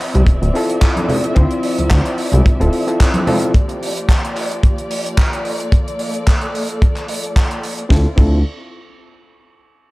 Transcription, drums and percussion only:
0.00 clap soft
0.00 open hi-hat medium
0.14 closed hi-hat medium
0.14 muted conga soft
0.14 low conga loud
0.27 kick loud
0.27 closed hi-hat medium
0.43 closed hi-hat medium
0.55 open hi-hat loud
0.70 closed hi-hat medium
0.82 kick loud
0.82 clap loud
0.82 closed hi-hat medium
0.96 closed hi-hat medium
0.96 high conga loud
1.09 open hi-hat loud
1.09 low conga loud
1.24 closed hi-hat medium
1.36 kick loud
1.36 closed hi-hat medium
1.51 closed hi-hat medium
1.63 open hi-hat loud
1.78 closed hi-hat medium
1.78 high conga medium
1.91 kick loud
1.91 clap loud
1.91 closed hi-hat medium
2.05 closed hi-hat medium
2.18 open hi-hat loud
2.32 closed hi-hat medium
2.32 muted conga soft
2.32 low conga medium
2.46 kick loud
2.46 closed hi-hat medium
2.61 closed hi-hat medium
2.73 open hi-hat loud
2.88 closed hi-hat medium
3.00 kick loud
3.00 clap loud
3.00 closed hi-hat medium
3.14 closed hi-hat medium
3.14 high conga loud
3.27 open hi-hat loud
3.27 low conga loud
3.42 closed hi-hat medium
3.54 kick loud
3.54 closed hi-hat medium
3.69 closed hi-hat medium
3.83 open hi-hat loud
3.97 closed hi-hat medium
4.09 kick loud
4.09 clap loud
4.09 closed hi-hat medium
4.25 closed hi-hat soft
4.37 clap soft
4.37 open hi-hat loud
4.52 closed hi-hat medium
4.63 kick loud
4.63 closed hi-hat medium
4.78 closed hi-hat medium
4.91 open hi-hat loud
5.06 closed hi-hat medium
5.18 kick loud
5.18 clap loud
5.18 closed hi-hat medium
5.33 closed hi-hat soft
5.45 open hi-hat loud
5.60 closed hi-hat medium
5.72 kick loud
5.72 closed hi-hat medium
5.88 closed hi-hat soft
5.99 open hi-hat loud
6.14 closed hi-hat medium
6.27 kick loud
6.27 clap loud
6.27 closed hi-hat medium
6.41 closed hi-hat soft
6.55 open hi-hat loud
6.69 closed hi-hat medium
6.82 kick loud
6.82 closed hi-hat medium
6.96 clap soft
6.96 closed hi-hat medium
7.08 open hi-hat loud
7.24 closed hi-hat medium
7.36 kick loud
7.36 clap loud
7.36 closed hi-hat medium
7.51 closed hi-hat medium
7.63 open hi-hat loud
7.78 closed hi-hat soft
7.90 kick loud
7.90 snare medium
8.18 kick loud
8.18 crash medium

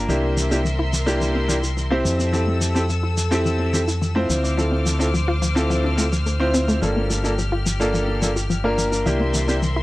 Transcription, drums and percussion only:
0.10 cabasa soft
0.38 cabasa medium
0.51 cabasa soft
0.65 cabasa soft
0.93 cabasa medium
1.07 cabasa soft
1.22 cabasa soft
1.49 cabasa medium
1.64 cabasa soft
1.77 cabasa soft
2.05 cabasa medium
2.20 cabasa soft
2.33 cabasa soft
2.62 cabasa medium
2.76 cabasa soft
2.90 cabasa soft
3.18 cabasa medium
3.32 cabasa soft
3.46 cabasa soft
3.74 cabasa medium
3.88 cabasa soft
4.02 cabasa soft
4.30 cabasa medium
4.45 cabasa soft
4.58 cabasa soft
4.86 cabasa medium
5.00 cabasa soft
5.14 cabasa soft
5.42 cabasa medium
5.57 cabasa soft
5.71 cabasa soft
5.98 cabasa medium
6.13 cabasa soft
6.26 cabasa soft
6.54 cabasa medium
6.69 cabasa soft
6.82 cabasa soft
7.11 cabasa medium
7.25 cabasa soft
7.38 cabasa soft
7.66 cabasa medium
7.81 cabasa soft
7.94 cabasa soft
8.22 cabasa medium
8.37 cabasa soft
8.50 cabasa soft
8.78 cabasa medium
8.93 cabasa soft
9.06 cabasa soft
9.34 cabasa medium
9.48 cabasa soft
9.62 cabasa soft

